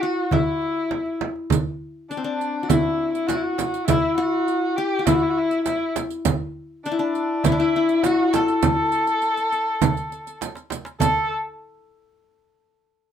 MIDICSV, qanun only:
0, 0, Header, 1, 2, 480
1, 0, Start_track
1, 0, Tempo, 593472
1, 1220, Time_signature, 4, 2, 24, 8
1, 10612, End_track
2, 0, Start_track
2, 0, Title_t, "Qanun"
2, 0, Program_c, 0, 107
2, 0, Note_on_c, 0, 64, 87
2, 23, Note_on_c, 0, 66, 83
2, 263, Note_off_c, 0, 64, 0
2, 266, Note_on_c, 0, 64, 76
2, 1085, Note_off_c, 0, 66, 0
2, 1392, Note_off_c, 0, 64, 0
2, 1704, Note_on_c, 0, 62, 67
2, 1757, Note_on_c, 0, 60, 60
2, 1812, Note_off_c, 0, 62, 0
2, 1815, Note_on_c, 0, 62, 68
2, 2128, Note_on_c, 0, 66, 58
2, 2180, Note_on_c, 0, 64, 77
2, 2653, Note_off_c, 0, 66, 0
2, 2657, Note_on_c, 0, 66, 86
2, 3023, Note_off_c, 0, 62, 0
2, 3054, Note_off_c, 0, 60, 0
2, 3137, Note_off_c, 0, 64, 0
2, 3140, Note_on_c, 0, 64, 82
2, 3375, Note_off_c, 0, 66, 0
2, 3378, Note_on_c, 0, 66, 95
2, 3865, Note_on_c, 0, 67, 89
2, 3914, Note_off_c, 0, 66, 0
2, 4037, Note_on_c, 0, 66, 60
2, 4085, Note_off_c, 0, 67, 0
2, 4100, Note_off_c, 0, 64, 0
2, 4103, Note_on_c, 0, 64, 79
2, 5099, Note_off_c, 0, 66, 0
2, 5229, Note_off_c, 0, 64, 0
2, 5548, Note_on_c, 0, 62, 77
2, 5593, Note_on_c, 0, 64, 68
2, 5652, Note_off_c, 0, 62, 0
2, 5655, Note_on_c, 0, 62, 76
2, 6031, Note_off_c, 0, 64, 0
2, 6034, Note_on_c, 0, 64, 84
2, 6078, Note_off_c, 0, 62, 0
2, 6081, Note_on_c, 0, 62, 73
2, 6141, Note_off_c, 0, 64, 0
2, 6145, Note_on_c, 0, 64, 80
2, 6273, Note_off_c, 0, 64, 0
2, 6277, Note_on_c, 0, 64, 82
2, 6519, Note_on_c, 0, 66, 94
2, 6759, Note_on_c, 0, 69, 91
2, 7290, Note_off_c, 0, 62, 0
2, 7402, Note_off_c, 0, 64, 0
2, 7582, Note_off_c, 0, 66, 0
2, 8398, Note_off_c, 0, 69, 0
2, 8897, Note_on_c, 0, 69, 78
2, 9123, Note_off_c, 0, 69, 0
2, 10612, End_track
0, 0, End_of_file